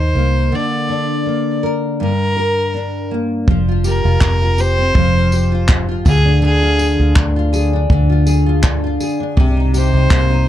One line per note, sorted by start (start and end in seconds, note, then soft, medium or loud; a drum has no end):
0.00 0.12 D#2 medium
0.00 0.52 D#3 medium
0.00 0.15 A#3 medium
0.00 0.61 D#4 medium
0.00 1.63 A#4 medium
0.00 0.56 C5 medium
0.15 0.49 C2 medium
0.15 1.25 A#3 medium
0.52 2.08 D3 medium
0.52 1.64 D5 medium
0.89 2.08 D4 medium
1.26 2.08 A#3 medium
1.63 2.08 A#4 medium
2.00 3.56 G2 medium
2.00 3.08 A#4 loud
2.37 3.56 A#4 medium
2.74 3.56 D4 medium
3.11 3.56 A#3 medium
3.48 4.01 F1 medium
3.48 4.95 F3 medium
3.48 kick loud
3.69 4.05 F4 medium
3.84 4.57 G4 medium
3.84 4.61 A#4 loud
3.84 tambourine medium
4.05 4.20 F1 loud
4.05 4.42 F4 medium
4.21 4.91 F1 loud
4.21 4.77 C4 medium
4.21 kick loud
4.21 clap loud
4.42 5.15 F4 medium
4.58 5.31 G4 medium
4.58 5.70 C5 loud
4.58 tambourine medium
4.79 5.67 C4 medium
4.95 6.02 F1 loud
4.95 6.05 F3 medium
4.95 kick loud
5.16 5.51 F4 medium
5.32 6.14 G4 medium
5.32 tambourine medium
5.52 5.88 F4 medium
5.68 6.14 C4 medium
5.68 kick loud
5.68 clap loud
5.89 6.62 F4 medium
6.05 6.96 D2 medium
6.05 6.41 D3 medium
6.05 6.41 G#4 loud
6.05 kick loud
6.05 tambourine medium
6.25 7.15 D4 medium
6.42 7.88 D3 medium
6.42 7.13 G#4 loud
6.62 6.98 F4 medium
6.79 7.51 G#4 medium
6.79 tambourine medium
7.00 7.15 D2 loud
7.00 7.35 F4 medium
7.16 7.86 D2 loud
7.16 7.72 D4 medium
7.16 kick loud
7.16 clap loud
7.36 8.08 F4 medium
7.53 8.25 G#4 medium
7.53 tambourine medium
7.73 8.62 D4 medium
7.90 8.96 D2 medium
7.90 9.36 D3 medium
7.90 kick loud
8.09 8.45 F4 medium
8.26 8.99 G#4 medium
8.26 tambourine medium
8.46 8.83 F4 medium
8.63 9.19 D4 medium
8.63 kick loud
8.63 clap loud
8.84 9.45 F4 medium
9.00 9.45 G#4 medium
9.00 tambourine medium
9.20 9.45 D4 medium
9.37 9.90 C2 loud
9.37 10.48 C3 loud
9.37 kick loud
9.57 9.94 D#4 medium
9.74 10.47 G4 medium
9.74 10.48 C5 medium
9.74 tambourine medium
9.93 10.09 C2 loud
9.93 10.30 D#4 medium
10.10 10.48 C2 loud
10.10 10.48 A#3 medium
10.10 kick loud
10.10 clap loud
10.31 10.48 D#4 medium